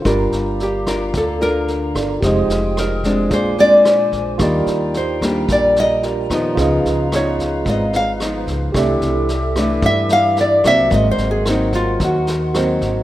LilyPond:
<<
  \new Staff \with { instrumentName = "Flute section" } { \time 4/4 \key g \minor \tempo 4 = 110 << { bes''1 | ees'''2 d'''2 | bes''1~ | bes''1 |
d'''1 | c'''1 | } \\ { <g' f''>1 | g''2 <c'' aes''>2 | <d' g''>1 | <b' eis''>1 |
<a' e''>1 | <bes' ges''>1 | } >> }
  \new Staff \with { instrumentName = "Nylon-string guitar" } { \time 4/4 \key g \minor r4 g'4 a'8 bes'8 r4 | r4 bes'4 c''8 d''8 r4 | r4 c''4 d''8 ees''8 r4 | r4 cis''4 dis''8 eis''8 r4 |
r2 e''8 f''8 d''8 e''8 | \tuplet 3/2 { ees''8 c''8 aes'8 } ees'8 f'8 ges'2 | }
  \new Staff \with { instrumentName = "Tine electric piano" } { \time 4/4 \key g \minor <f' bes' d''>2.~ <f' bes' d''>8 <f' a' bes' d''>8 | <g' c'' ees''>2 <f' aes' c'' d''>2 | <f' g' bes' d''>2. <f' g' bes' d''>4 | <eis' gis' b' dis''>1 |
<g' a' d'' e''>1 | <ges' bes' c'' ees''>2. <ges' bes' c'' ees''>4 | }
  \new Staff \with { instrumentName = "Nylon-string guitar" } { \time 4/4 \key g \minor << { <d' f' bes'>4 r8 <d' f' bes'>4 <d' f' bes'>4. | <aes ees' g'>4. <aes c' d'>4 <aes c' d'>4. | <g bes d'>4 r8 <g bes d'>2 <f b ees'>8~ | <f b ees'>4 <eis b dis'>4. r8 <eis b dis'>4 |
<e a d'>4 r8 <e a d'>2 <fis bes c'>8~ | <fis bes c'>4 <ges bes c'>4. r8 <ges bes c'>4 | } \\ { g2 d2 | f2 bes,2 | ees2 bes,2 | cis2 gis,2 |
c2 g,2 | aes,2 ees2 | } >> }
  \new Staff \with { instrumentName = "Upright bass" } { \clef bass \time 4/4 \key g \minor g,,8 g,,4. d,4. g,,8 | f,,8 f,,4. bes,,4. bes,,8 | ees,8 ees,4. bes,,4. ees,8 | cis,8 cis,4. gis,,4. cis,8 |
c,8 c,4. g,4. c,8 | aes,,8 aes,,4. ees,4. aes,,8 | }
  \new DrumStaff \with { instrumentName = "Drums" } \drummode { \time 4/4 <bd ss sn>8 sn8 sn8 <bd ss sn>8 <bd sn>8 sn8 sn8 <bd ss sn>8 | <bd sn>8 sn8 <ss sn>8 <bd sn>8 <bd sn>8 sn8 <ss sn>8 <bd sn>8 | <bd ss sn>8 sn8 sn8 <bd ss sn>8 <bd sn>8 sn8 sn8 <bd ss sn>8 | <bd sn>8 sn8 <ss sn>8 <bd sn>8 <bd sn>8 sn8 <ss sn>8 <bd sn>8 |
<bd ss sn>8 sn8 sn8 <bd ss sn>8 <bd sn>8 sn8 sn8 <bd ss sn>8 | <bd sn>8 sn8 <ss sn>8 <bd sn>8 <bd sn>8 sn8 <ss sn>8 <bd sn>8 | }
>>